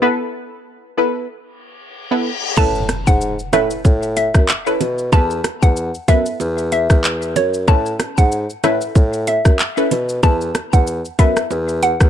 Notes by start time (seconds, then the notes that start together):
0.02 B3 E4 A4 B4
0.97 B3 E4 A4 B4
1.30 reverse cymbal
2.11 B3 E4 A4 B4
2.57 A2 C#4 E4 A4 B4 A5, kick, crash, high bongo, impact, shaker
2.75 shaker
2.89 cross-stick, closed hi-hat, high bongo, shaker
3.07 G#2 F#5, kick, shaker
3.21 shaker
3.39 shaker
3.53 A2 C#4 E4 A4 B4 E5, cross-stick, closed hi-hat, low bongo, shaker
3.71 shaker
3.85 A2, kick, high bongo, shaker
4.03 shaker
4.17 E5, closed hi-hat, high bongo, shaker
4.34 F#2, kick, cross-stick, shaker
4.48 clap, shaker
4.66 C#4 E4 A4 B4, shaker
4.81 B2, closed hi-hat, low bongo, shaker
4.98 shaker
5.12 E2 B3 E4 A4 B4 A5, kick, high bongo, shaker
5.31 shaker
5.44 cross-stick, closed hi-hat, high bongo, shaker
5.62 E2 F#5, kick, shaker
5.76 shaker
5.95 shaker
6.08 F#2 B3 E4 A4 B4 E5, kick, closed hi-hat, low bongo, shaker
6.26 shaker
6.40 E2, high bongo, shaker
6.58 shaker
6.72 E5, closed hi-hat, high bongo, shaker
6.90 E2, kick, cross-stick, shaker
7.04 clap, shaker
7.22 shaker
7.36 F#2 C#5, closed hi-hat, low bongo, shaker
7.54 shaker
7.67 A2 C#4 E4 A4 B4 A5, kick, high bongo, shaker
7.86 shaker
7.99 cross-stick, closed hi-hat, high bongo, shaker
8.18 G#2 F#5, kick, shaker
8.32 shaker
8.50 shaker
8.64 A2 C#4 E4 A4 B4 E5, cross-stick, closed hi-hat, low bongo, shaker
8.81 shaker
8.95 A2, kick, high bongo, shaker
9.13 shaker
9.27 E5, closed hi-hat, high bongo, shaker
9.45 F#2, kick, cross-stick, shaker
9.59 clap, shaker
9.77 C#4 E4 A4 B4, shaker
9.91 B2, closed hi-hat, low bongo, shaker
10.09 shaker
10.23 E2 B3 E4 A4 B4 A5, kick, high bongo, shaker
10.41 shaker
10.55 cross-stick, closed hi-hat, high bongo, shaker
10.73 E2 F#5, kick, shaker
10.87 shaker
11.05 shaker
11.19 F#2 B3 E4 A4 B4 E5, kick, closed hi-hat, shaker
11.37 cross-stick, shaker
11.51 E2, high bongo, shaker
11.69 shaker
11.83 F#5, closed hi-hat, high bongo, shaker
12.00 E2, kick, cross-stick, shaker